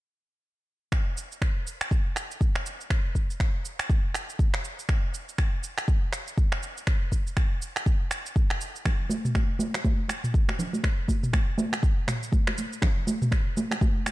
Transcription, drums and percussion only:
0.92 finger snap medium
0.92 kick loud
0.92 shaker soft
1.17 shaker medium
1.32 shaker soft
1.42 finger snap medium
1.42 kick loud
1.42 shaker soft
1.67 shaker medium
1.81 finger snap medium
1.81 shaker soft
1.91 kick loud
1.91 shaker soft
2.16 finger snap medium
2.16 shaker medium
2.31 shaker soft
2.41 kick loud
2.41 shaker soft
2.56 finger snap medium
2.66 shaker medium
2.81 shaker soft
2.90 finger snap medium
2.90 kick loud
2.90 shaker soft
3.15 kick medium
3.15 shaker medium
3.30 shaker soft
3.40 finger snap medium
3.40 kick loud
3.40 shaker soft
3.65 shaker medium
3.79 finger snap medium
3.79 shaker medium
3.90 kick loud
3.90 shaker soft
4.14 finger snap medium
4.14 shaker medium
4.30 shaker medium
4.39 kick loud
4.39 shaker soft
4.54 finger snap medium
4.64 shaker medium
4.79 shaker medium
4.89 finger snap medium
4.89 kick loud
4.89 shaker soft
5.14 shaker medium
5.29 shaker medium
5.38 finger snap medium
5.38 kick loud
5.38 shaker soft
5.64 shaker medium
5.78 finger snap medium
5.78 shaker medium
5.88 kick loud
5.88 shaker soft
6.13 finger snap medium
6.13 shaker medium
6.28 shaker medium
6.38 kick loud
6.38 shaker soft
6.52 finger snap medium
6.63 shaker medium
6.77 shaker medium
6.87 finger snap medium
6.87 kick loud
6.87 shaker soft
7.12 kick medium
7.12 shaker medium
7.27 shaker medium
7.37 finger snap medium
7.37 kick loud
7.37 shaker soft
7.62 shaker medium
7.76 finger snap medium
7.76 shaker medium
7.86 kick loud
7.86 shaker soft
8.11 finger snap medium
8.11 shaker medium
8.26 shaker medium
8.36 kick loud
8.36 shaker soft
8.50 finger snap medium
8.61 shaker medium
8.76 shaker medium
8.85 finger snap medium
8.85 kick loud
8.85 muted conga medium
8.85 low conga medium
8.85 shaker soft
9.09 high conga medium
9.09 shaker medium
9.25 mid tom medium
9.25 shaker medium
9.35 finger snap medium
9.35 kick loud
9.35 muted conga soft
9.35 high conga medium
9.35 shaker soft
9.59 high conga loud
9.59 shaker medium
9.74 finger snap medium
9.74 muted conga soft
9.74 shaker soft
9.85 kick loud
9.85 high conga loud
9.85 shaker soft
10.08 finger snap medium
10.08 muted conga soft
10.08 shaker medium
10.24 mid tom medium
10.24 shaker medium
10.34 kick loud
10.34 shaker soft
10.48 finger snap medium
10.48 muted conga soft
10.48 high conga medium
10.59 low conga medium
10.59 shaker medium
10.73 high conga medium
10.73 shaker soft
10.84 finger snap medium
10.84 kick loud
10.84 muted conga medium
10.84 shaker soft
11.08 kick medium
11.08 high conga medium
11.08 shaker medium
11.23 mid tom medium
11.23 shaker soft
11.33 finger snap medium
11.33 kick loud
11.33 muted conga soft
11.33 high conga medium
11.33 shaker soft
11.58 high conga loud
11.58 shaker medium
11.73 finger snap medium
11.73 muted conga soft
11.73 shaker soft
11.83 kick loud
11.83 shaker soft
12.07 finger snap medium
12.07 mid tom medium
12.07 muted conga soft
12.07 shaker medium
12.23 shaker medium
12.32 kick loud
12.32 high conga medium
12.32 shaker soft
12.47 finger snap medium
12.47 muted conga soft
12.58 high conga medium
12.58 shaker medium
12.73 shaker soft
12.82 finger snap medium
12.82 kick loud
12.82 muted conga medium
12.82 low conga medium
12.82 shaker soft
13.07 high conga medium
13.07 shaker medium
13.22 mid tom loud
13.22 shaker soft
13.31 finger snap medium
13.31 kick loud
13.31 muted conga soft
13.31 high conga medium
13.31 shaker soft
13.57 high conga loud
13.57 shaker medium
13.71 finger snap medium
13.71 muted conga medium
13.71 shaker soft
13.81 kick loud
13.81 high conga loud
13.81 shaker soft
14.06 finger snap medium
14.06 muted conga soft
14.06 shaker medium

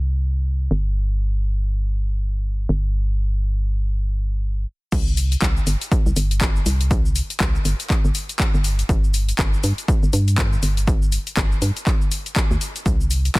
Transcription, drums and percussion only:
4.92 kick loud
4.92 closed hi-hat medium
4.92 crash loud
4.92 shaker soft
5.07 shaker soft
5.17 open hi-hat loud
5.17 shaker medium
5.32 closed hi-hat medium
5.32 shaker soft
5.42 kick loud
5.42 clap loud
5.42 closed hi-hat medium
5.42 shaker soft
5.57 shaker soft
5.67 open hi-hat loud
5.67 shaker medium
5.81 closed hi-hat medium
5.81 shaker soft
5.92 kick loud
5.92 closed hi-hat medium
5.92 shaker soft
6.06 shaker soft
6.16 open hi-hat loud
6.16 shaker medium
6.31 closed hi-hat medium
6.31 shaker soft
6.41 kick loud
6.41 clap loud
6.41 closed hi-hat medium
6.41 shaker soft
6.56 shaker soft
6.66 open hi-hat loud
6.66 shaker medium
6.81 closed hi-hat medium
6.81 shaker soft
6.91 kick loud
6.91 closed hi-hat medium
6.91 shaker soft
7.06 shaker soft
7.16 open hi-hat loud
7.16 shaker medium
7.30 closed hi-hat medium
7.30 shaker soft
7.40 kick loud
7.40 clap loud
7.40 closed hi-hat medium
7.40 shaker soft
7.55 shaker soft
7.65 open hi-hat loud
7.65 shaker medium
7.80 closed hi-hat medium
7.80 shaker soft
7.90 kick loud
7.90 clap medium
7.90 closed hi-hat medium
7.90 shaker soft
8.05 shaker soft
8.15 open hi-hat loud
8.15 shaker medium
8.29 closed hi-hat medium
8.29 shaker soft
8.40 kick loud
8.40 clap loud
8.40 closed hi-hat medium
8.40 shaker soft
8.54 shaker soft
8.64 open hi-hat loud
8.64 shaker medium
8.79 closed hi-hat medium
8.79 shaker soft
8.89 kick loud
8.89 closed hi-hat medium
8.89 shaker soft
9.04 shaker soft
9.14 open hi-hat loud
9.14 shaker medium
9.29 closed hi-hat medium
9.29 shaker soft
9.39 kick loud
9.39 clap loud
9.39 closed hi-hat soft
9.39 shaker soft
9.54 shaker soft
9.64 open hi-hat loud
9.64 shaker medium
9.78 closed hi-hat medium
9.78 shaker soft
9.88 kick loud
9.88 closed hi-hat soft
9.88 shaker soft
10.03 shaker soft
10.13 open hi-hat loud
10.13 shaker medium
10.28 closed hi-hat medium
10.28 shaker soft
10.38 kick loud
10.38 clap loud
10.38 closed hi-hat soft
10.38 shaker soft
10.53 shaker soft
10.63 open hi-hat loud
10.63 shaker medium
10.77 closed hi-hat medium
10.77 shaker soft
10.87 kick loud
10.87 closed hi-hat medium
10.87 shaker soft
11.02 shaker soft
11.12 open hi-hat loud
11.12 shaker medium
11.27 closed hi-hat medium
11.27 shaker soft
11.37 kick loud
11.37 clap loud
11.37 closed hi-hat medium
11.37 shaker soft
11.52 shaker soft
11.62 open hi-hat loud
11.62 shaker medium
11.77 closed hi-hat medium
11.77 shaker soft
11.87 kick loud
11.87 clap medium
11.87 closed hi-hat soft
11.87 shaker soft
12.02 shaker soft
12.12 open hi-hat loud
12.12 shaker medium
12.26 closed hi-hat medium
12.26 shaker soft
12.36 kick loud
12.36 clap loud
12.36 closed hi-hat medium
12.36 shaker soft
12.51 shaker soft
12.61 open hi-hat loud
12.61 shaker medium
12.76 closed hi-hat medium
12.76 shaker soft
12.86 kick loud
12.86 closed hi-hat soft
12.86 shaker soft
13.01 shaker soft
13.11 open hi-hat loud
13.11 shaker medium
13.25 closed hi-hat medium
13.25 shaker soft
13.35 kick loud
13.35 clap loud
13.35 closed hi-hat medium
13.35 shaker soft

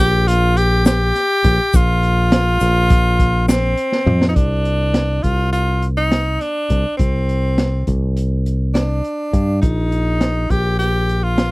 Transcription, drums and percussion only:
0.28 snare soft
0.28 closed hi-hat medium
0.57 closed hi-hat medium
0.85 snare loud
0.85 closed hi-hat medium
0.85 shaker medium
1.15 snare soft
1.15 closed hi-hat medium
1.44 kick medium
1.44 closed hi-hat medium
1.73 kick loud
1.73 closed hi-hat medium
1.73 shaker medium
2.03 closed hi-hat medium
2.32 snare loud
2.32 closed hi-hat medium
2.60 snare soft
2.60 closed hi-hat medium
2.60 shaker soft
2.89 kick loud
2.89 closed hi-hat medium
2.89 shaker soft
3.20 kick medium
3.20 closed hi-hat medium
3.49 snare loud
3.49 closed hi-hat medium
3.49 shaker medium
3.78 closed hi-hat medium
3.92 snare medium
4.07 mid tom medium
4.22 snare medium
4.36 kick medium
4.36 closed hi-hat medium
4.65 closed hi-hat medium
4.94 snare medium
4.94 closed hi-hat medium
5.24 kick medium
5.24 closed hi-hat medium
5.53 closed hi-hat medium
5.82 closed hi-hat medium
6.12 snare medium
6.12 closed hi-hat medium
6.41 snare soft
6.41 closed hi-hat medium
6.70 kick medium
6.70 closed hi-hat medium
6.99 kick loud
6.99 closed hi-hat medium
7.29 closed hi-hat soft
7.58 snare medium
7.58 closed hi-hat medium
7.87 kick medium
7.87 closed hi-hat medium
8.17 closed hi-hat medium
8.46 closed hi-hat medium
8.75 snare medium
8.75 closed hi-hat medium
9.04 closed hi-hat medium
9.34 kick medium
9.34 closed hi-hat medium
9.63 kick medium
9.63 closed hi-hat medium
9.92 closed hi-hat medium
10.21 snare medium
10.21 closed hi-hat medium
10.50 kick medium
10.50 closed hi-hat medium
10.80 snare soft
10.80 closed hi-hat medium
11.09 closed hi-hat medium
11.38 snare loud
11.38 closed hi-hat medium

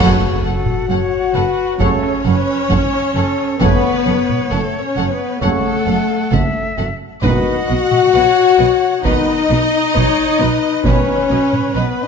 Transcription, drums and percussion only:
0.66 taiko mid medium
1.80 taiko loud
2.03 taiko rim soft
2.70 taiko medium
2.93 taiko rim soft
3.38 taiko rim soft
3.61 taiko loud
4.29 taiko mid medium
5.42 taiko medium
6.32 taiko medium
7.23 taiko loud
7.91 taiko mid medium
9.05 taiko medium
9.95 taiko medium
10.85 taiko loud
11.53 taiko mid medium

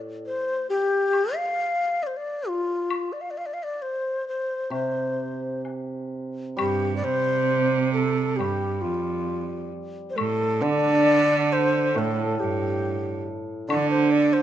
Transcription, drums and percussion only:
1.13 high woodblock soft
2.90 high woodblock medium
4.71 high woodblock soft
5.65 low woodblock soft
6.59 high woodblock medium
8.41 high woodblock soft
10.18 high woodblock medium
11.96 high woodblock soft
13.70 high woodblock medium

